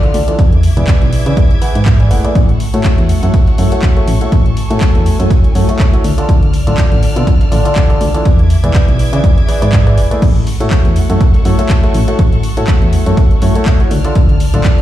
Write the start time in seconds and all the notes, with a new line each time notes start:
Already playing: D5 A5 F6
0.03 D3 D4 F4 A4 D5, closed hi-hat
0.14 D2, closed hi-hat, open hi-hat
0.28 E3 D4 F4 A4 D5, closed hi-hat
0.39 E2 E5 D6 G#6, kick, closed hi-hat
0.52 closed hi-hat
0.63 closed hi-hat, open hi-hat
0.77 E1 E3 E4 G#4 B4 D5, closed hi-hat
0.87 kick, snare, clap, closed hi-hat
1.02 B1, closed hi-hat
1.13 closed hi-hat, open hi-hat
1.26 C#3 E3 E4 G#4 B4 D5, closed hi-hat
1.37 E1, kick, closed hi-hat
1.51 closed hi-hat
1.62 E3 E4 G#4 B4 F#5, closed hi-hat, open hi-hat
1.75 G#2, closed hi-hat
1.86 kick, snare, clap, closed hi-hat
2.00 E3 E4 G#4 B4 D5, closed hi-hat
2.11 E1 A3 E4 G#4 B4 F#5, closed hi-hat, open hi-hat
2.24 A3 E4 G#4 B4 D5, closed hi-hat
2.35 A1 A4 F#5 C#6, kick, closed hi-hat
2.49 closed hi-hat
2.60 closed hi-hat, open hi-hat
2.74 A2 A3 E4 F#4 A4 C#5, closed hi-hat
2.84 kick, snare, clap, closed hi-hat, open hi-hat
2.98 E2, closed hi-hat
3.09 closed hi-hat, open hi-hat
3.23 F#2 A3 E4 F#4 A4 C#5, closed hi-hat
3.34 kick, closed hi-hat
3.47 snare, closed hi-hat
3.58 F#2 A3 E4 F#4 A4 C#5, closed hi-hat, open hi-hat
3.72 A3 E4 F#4 A4 C#5, closed hi-hat
3.82 kick, snare, clap, closed hi-hat
3.96 A3 E4 F#4 A4 C#5, closed hi-hat
4.08 A1, closed hi-hat, open hi-hat
4.21 A3 E4 F#4 A4 C#5, closed hi-hat
4.32 A1 G#5, kick, closed hi-hat
4.46 closed hi-hat
4.57 closed hi-hat, open hi-hat
4.70 A2 A3 E4 F#4 A4 C#5, closed hi-hat
4.81 kick, snare, clap, closed hi-hat
4.95 E2, closed hi-hat
5.06 closed hi-hat, open hi-hat
5.19 F#2 A3 E4 F#4 A4 C#5, closed hi-hat
5.30 kick, closed hi-hat
5.44 closed hi-hat
5.55 F#2 A3 E4 F#4 A4 C#5, closed hi-hat, open hi-hat
5.69 A3 E4 F#4 A4 C#5, closed hi-hat
5.79 kick, snare, clap, closed hi-hat
5.93 E4 F#4 A4 C#5, closed hi-hat
6.04 D2 D5 A5 F6, closed hi-hat, open hi-hat
6.18 D3 D4 F4 A4 D5, closed hi-hat
6.29 D2, kick, closed hi-hat
6.43 closed hi-hat
6.53 closed hi-hat, open hi-hat
6.67 D1 D3 D4 F4 A4 D5, closed hi-hat
6.78 kick, snare, clap, closed hi-hat, open hi-hat
6.92 A1, closed hi-hat
7.03 closed hi-hat, open hi-hat
7.16 B2 D3 D4 F4 A4 D5, closed hi-hat
7.27 kick, closed hi-hat
7.41 snare, closed hi-hat
7.52 A1 D3 D4 F4 A4 D5, closed hi-hat, open hi-hat
7.65 D3 D4 F4 A4 D5, closed hi-hat
7.76 kick, snare, clap, closed hi-hat
7.90 D3 D4 F4 A4 D5, closed hi-hat
8.01 D2, closed hi-hat, open hi-hat
8.14 E3 D4 F4 A4 D5, closed hi-hat
8.25 E2 E5 D6 G#6, kick, closed hi-hat
8.39 closed hi-hat
8.50 closed hi-hat, open hi-hat
8.64 E1 E3 E4 G#4 B4 D5, closed hi-hat
8.74 kick, snare, clap, closed hi-hat
8.88 B1, closed hi-hat
8.99 closed hi-hat, open hi-hat
9.13 C#3 E3 E4 G#4 B4 D5, closed hi-hat
9.24 E1, kick, closed hi-hat
9.38 closed hi-hat
9.48 E3 E4 G#4 B4 D5, closed hi-hat, open hi-hat
9.62 G#2 E3 E4 G#4 B4 D5, closed hi-hat
9.73 kick, snare, clap, closed hi-hat
9.86 E3 E4 G#4 B4 D5, closed hi-hat
9.98 E1, closed hi-hat, open hi-hat
10.11 A3 E4 G#4 B4 D5, closed hi-hat
10.22 A1 A4 F#5 C#6, kick, closed hi-hat, crash
10.36 closed hi-hat
10.47 closed hi-hat, open hi-hat
10.60 A2 A3 E4 F#4 A4 C#5, closed hi-hat
10.71 kick, snare, clap, closed hi-hat, open hi-hat
10.85 E2, closed hi-hat
10.96 closed hi-hat, open hi-hat
11.10 F#2 A3 E4 F#4 A4 C#5, closed hi-hat
11.21 kick, closed hi-hat
11.34 snare, closed hi-hat
11.45 F#2 A3 E4 F#4 A4 C#5, closed hi-hat, open hi-hat
11.59 A3 E4 F#4 A4 C#5, closed hi-hat
11.69 kick, snare, clap, closed hi-hat
11.83 A3 E4 F#4 A4 C#5, closed hi-hat
11.94 A1, closed hi-hat, open hi-hat
12.08 A3 E4 F#4 A4 C#5, closed hi-hat
12.19 A1, kick, closed hi-hat
12.32 closed hi-hat
12.43 closed hi-hat, open hi-hat
12.57 A2 A3 E4 F#4 A4 C#5, closed hi-hat
12.67 kick, snare, clap, closed hi-hat
12.82 E2, closed hi-hat
12.93 closed hi-hat, open hi-hat
13.06 F#2 A3 E4 F#4 A4 C#5, closed hi-hat
13.17 kick, closed hi-hat
13.31 closed hi-hat
13.42 F#2 A3 E4 F#4 A4 C#5, closed hi-hat, open hi-hat
13.55 A3 E4 F#4 A4 C#5, closed hi-hat
13.66 kick, snare, clap, closed hi-hat
13.80 E4 F#4 A4 C#5, closed hi-hat
13.91 D2 D5 A5 F6, closed hi-hat, open hi-hat
14.04 D3 D4 F4 A4 D5, closed hi-hat
14.15 D2, kick, closed hi-hat
14.29 closed hi-hat
14.40 closed hi-hat, open hi-hat
14.54 D1 D3 D4 F4 A4 D5, closed hi-hat
14.64 kick, snare, clap, closed hi-hat, open hi-hat
14.78 A1, closed hi-hat